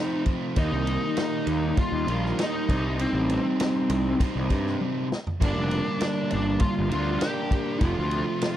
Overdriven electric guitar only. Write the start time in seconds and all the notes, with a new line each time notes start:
Already playing: F2 C3 F3
0.00 A3 C4
0.56 D#3 G3 A#3 D#4
2.07 D#3 G3 A#3 D#4
2.38 D#3 G3 A#3 D#4
2.68 C3 G3 C4 D#4
4.20 C3 G3 C4 D#4
4.49 C3 G3 C4 D#4
5.40 G2 D3 G3 A#3 D4
6.91 G2 D3 G3 A#3 D4
7.20 G2 D3 G3 A#3 D4
7.81 F2 C3 F3 A3 C4